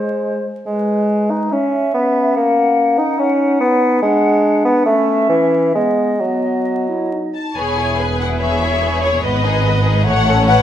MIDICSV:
0, 0, Header, 1, 9, 480
1, 0, Start_track
1, 0, Key_signature, 4, "major"
1, 0, Tempo, 434153
1, 724, Time_signature, 4, 2, 24, 8
1, 1672, Tempo, 418118
1, 5512, Tempo, 450450
1, 8392, Tempo, 415225
1, 11933, End_track
2, 0, Start_track
2, 0, Title_t, "Violin section"
2, 0, Program_c, 0, 48
2, 8164, Note_on_c, 0, 81, 40
2, 8380, Note_off_c, 0, 81, 0
2, 8394, Note_on_c, 0, 80, 48
2, 9128, Note_on_c, 0, 78, 51
2, 9129, Note_off_c, 0, 80, 0
2, 9220, Note_off_c, 0, 78, 0
2, 9360, Note_on_c, 0, 76, 60
2, 10077, Note_off_c, 0, 76, 0
2, 10086, Note_on_c, 0, 73, 52
2, 10324, Note_off_c, 0, 73, 0
2, 10329, Note_on_c, 0, 75, 54
2, 11281, Note_off_c, 0, 75, 0
2, 11284, Note_on_c, 0, 78, 69
2, 11734, Note_off_c, 0, 78, 0
2, 11748, Note_on_c, 0, 78, 68
2, 11933, Note_off_c, 0, 78, 0
2, 11933, End_track
3, 0, Start_track
3, 0, Title_t, "Flute section"
3, 0, Program_c, 1, 73
3, 0, Note_on_c, 1, 72, 39
3, 489, Note_off_c, 1, 72, 0
3, 730, Note_on_c, 1, 71, 34
3, 1631, Note_off_c, 1, 71, 0
3, 1669, Note_on_c, 1, 76, 42
3, 2619, Note_off_c, 1, 76, 0
3, 2648, Note_on_c, 1, 78, 41
3, 5518, Note_off_c, 1, 78, 0
3, 5525, Note_on_c, 1, 76, 52
3, 6457, Note_on_c, 1, 75, 38
3, 6461, Note_off_c, 1, 76, 0
3, 8161, Note_off_c, 1, 75, 0
3, 11933, End_track
4, 0, Start_track
4, 0, Title_t, "Viola section"
4, 0, Program_c, 2, 48
4, 8393, Note_on_c, 2, 73, 43
4, 8851, Note_off_c, 2, 73, 0
4, 8878, Note_on_c, 2, 71, 38
4, 9365, Note_on_c, 2, 73, 46
4, 9366, Note_off_c, 2, 71, 0
4, 10330, Note_on_c, 2, 71, 55
4, 10332, Note_off_c, 2, 73, 0
4, 11263, Note_off_c, 2, 71, 0
4, 11285, Note_on_c, 2, 73, 58
4, 11752, Note_on_c, 2, 71, 61
4, 11756, Note_off_c, 2, 73, 0
4, 11933, Note_off_c, 2, 71, 0
4, 11933, End_track
5, 0, Start_track
5, 0, Title_t, "Violin section"
5, 0, Program_c, 3, 48
5, 8398, Note_on_c, 3, 68, 34
5, 8399, Note_on_c, 3, 71, 35
5, 8624, Note_off_c, 3, 68, 0
5, 8625, Note_off_c, 3, 71, 0
5, 8649, Note_on_c, 3, 64, 33
5, 8650, Note_on_c, 3, 68, 35
5, 8887, Note_off_c, 3, 68, 0
5, 8890, Note_off_c, 3, 64, 0
5, 8901, Note_on_c, 3, 68, 31
5, 8904, Note_on_c, 3, 71, 30
5, 9122, Note_off_c, 3, 68, 0
5, 9136, Note_on_c, 3, 68, 31
5, 9138, Note_off_c, 3, 71, 0
5, 9143, Note_on_c, 3, 64, 33
5, 9354, Note_off_c, 3, 68, 0
5, 9367, Note_on_c, 3, 71, 37
5, 9368, Note_on_c, 3, 68, 37
5, 9377, Note_off_c, 3, 64, 0
5, 9593, Note_off_c, 3, 71, 0
5, 9594, Note_off_c, 3, 68, 0
5, 9612, Note_on_c, 3, 64, 33
5, 9618, Note_on_c, 3, 68, 34
5, 9847, Note_off_c, 3, 68, 0
5, 9856, Note_off_c, 3, 64, 0
5, 9859, Note_on_c, 3, 71, 36
5, 9861, Note_on_c, 3, 68, 35
5, 10084, Note_off_c, 3, 68, 0
5, 10093, Note_on_c, 3, 64, 36
5, 10098, Note_off_c, 3, 71, 0
5, 10098, Note_on_c, 3, 68, 36
5, 10331, Note_on_c, 3, 59, 44
5, 10333, Note_off_c, 3, 64, 0
5, 10333, Note_on_c, 3, 71, 42
5, 10335, Note_off_c, 3, 68, 0
5, 10553, Note_off_c, 3, 59, 0
5, 10554, Note_off_c, 3, 71, 0
5, 10571, Note_on_c, 3, 63, 42
5, 10573, Note_on_c, 3, 68, 43
5, 10809, Note_off_c, 3, 63, 0
5, 10810, Note_off_c, 3, 68, 0
5, 10810, Note_on_c, 3, 59, 38
5, 10810, Note_on_c, 3, 71, 37
5, 11045, Note_on_c, 3, 63, 39
5, 11046, Note_on_c, 3, 68, 43
5, 11048, Note_off_c, 3, 59, 0
5, 11048, Note_off_c, 3, 71, 0
5, 11278, Note_on_c, 3, 73, 50
5, 11283, Note_off_c, 3, 63, 0
5, 11283, Note_off_c, 3, 68, 0
5, 11283, Note_on_c, 3, 57, 47
5, 11500, Note_off_c, 3, 73, 0
5, 11503, Note_off_c, 3, 57, 0
5, 11523, Note_on_c, 3, 69, 45
5, 11526, Note_on_c, 3, 61, 42
5, 11757, Note_off_c, 3, 69, 0
5, 11759, Note_off_c, 3, 61, 0
5, 11763, Note_on_c, 3, 57, 40
5, 11764, Note_on_c, 3, 73, 48
5, 11933, Note_off_c, 3, 57, 0
5, 11933, Note_off_c, 3, 73, 0
5, 11933, End_track
6, 0, Start_track
6, 0, Title_t, "Clarinet"
6, 0, Program_c, 4, 71
6, 0, Note_on_c, 4, 56, 42
6, 449, Note_off_c, 4, 56, 0
6, 727, Note_on_c, 4, 56, 37
6, 1630, Note_off_c, 4, 56, 0
6, 1673, Note_on_c, 4, 61, 41
6, 3566, Note_off_c, 4, 61, 0
6, 3605, Note_on_c, 4, 63, 46
6, 4557, Note_on_c, 4, 62, 55
6, 4574, Note_off_c, 4, 63, 0
6, 5512, Note_on_c, 4, 61, 54
6, 5528, Note_off_c, 4, 62, 0
6, 6445, Note_off_c, 4, 61, 0
6, 6452, Note_on_c, 4, 59, 37
6, 6884, Note_off_c, 4, 59, 0
6, 6940, Note_on_c, 4, 59, 41
6, 7676, Note_on_c, 4, 64, 37
6, 7692, Note_off_c, 4, 59, 0
6, 7923, Note_on_c, 4, 63, 31
6, 7939, Note_off_c, 4, 64, 0
6, 8396, Note_off_c, 4, 63, 0
6, 11933, End_track
7, 0, Start_track
7, 0, Title_t, "Bassoon"
7, 0, Program_c, 5, 70
7, 0, Note_on_c, 5, 56, 62
7, 451, Note_off_c, 5, 56, 0
7, 726, Note_on_c, 5, 56, 52
7, 1440, Note_on_c, 5, 63, 47
7, 1456, Note_off_c, 5, 56, 0
7, 1684, Note_on_c, 5, 61, 54
7, 1701, Note_off_c, 5, 63, 0
7, 2156, Note_off_c, 5, 61, 0
7, 2163, Note_on_c, 5, 59, 48
7, 2634, Note_off_c, 5, 59, 0
7, 2647, Note_on_c, 5, 58, 58
7, 3363, Note_on_c, 5, 63, 59
7, 3380, Note_off_c, 5, 58, 0
7, 3598, Note_on_c, 5, 61, 58
7, 3616, Note_off_c, 5, 63, 0
7, 4067, Note_off_c, 5, 61, 0
7, 4074, Note_on_c, 5, 59, 64
7, 4541, Note_off_c, 5, 59, 0
7, 4551, Note_on_c, 5, 56, 69
7, 5255, Note_off_c, 5, 56, 0
7, 5271, Note_on_c, 5, 59, 60
7, 5505, Note_off_c, 5, 59, 0
7, 5512, Note_on_c, 5, 57, 73
7, 5965, Note_off_c, 5, 57, 0
7, 5976, Note_on_c, 5, 52, 58
7, 6446, Note_off_c, 5, 52, 0
7, 6462, Note_on_c, 5, 56, 49
7, 6943, Note_on_c, 5, 54, 39
7, 6959, Note_off_c, 5, 56, 0
7, 8161, Note_off_c, 5, 54, 0
7, 11933, End_track
8, 0, Start_track
8, 0, Title_t, "Cello section"
8, 0, Program_c, 6, 48
8, 8390, Note_on_c, 6, 40, 43
8, 10286, Note_off_c, 6, 40, 0
8, 10338, Note_on_c, 6, 44, 50
8, 11282, Note_on_c, 6, 45, 52
8, 11286, Note_off_c, 6, 44, 0
8, 11933, Note_off_c, 6, 45, 0
8, 11933, End_track
9, 0, Start_track
9, 0, Title_t, "Double bass section"
9, 0, Program_c, 7, 48
9, 8394, Note_on_c, 7, 28, 44
9, 10288, Note_off_c, 7, 28, 0
9, 10331, Note_on_c, 7, 32, 48
9, 11280, Note_on_c, 7, 33, 55
9, 11282, Note_off_c, 7, 32, 0
9, 11933, Note_off_c, 7, 33, 0
9, 11933, End_track
0, 0, End_of_file